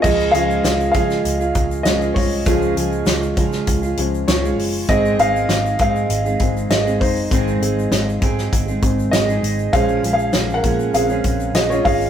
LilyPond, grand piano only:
<<
  \new Staff \with { instrumentName = "Grand piano" } { \time 4/4 \key des \major \tempo 4 = 99 <aes' ees''>8 <aes' f''>4 <aes' f''>4. <aes' ees''>8 <f' des''>8~ | <f' des''>8 r2 r8 <f' des''>4 | <aes' ees''>8 <aes' f''>4 <aes' f''>4. <aes' ees''>8 <ees' c''>8~ | <ees' c''>8 r2 r8 <aes' ees''>4 |
\tuplet 3/2 { <aes' f''>4 <aes' f''>8~ <aes' f''>8 <bes' ges''>4 } <aes' f''>4 <aes' ees''>16 <f' des''>16 <aes' f''>8 | }
  \new Staff \with { instrumentName = "Grand piano" } { \clef bass \time 4/4 \key des \major r8 <f aes des'>2~ <f aes des'>8 <f aes des'>8 r8 | <f aes des'>2~ <f aes des'>8 <f aes des'>8 r4 | <ees aes c'>2~ <ees aes c'>8 <ees aes c'>8 r4 | <ees aes c'>2~ <ees aes c'>8 <ees aes c'>8 r4 |
<des aes c''>2 <des aes c'>8 r4. | }
>>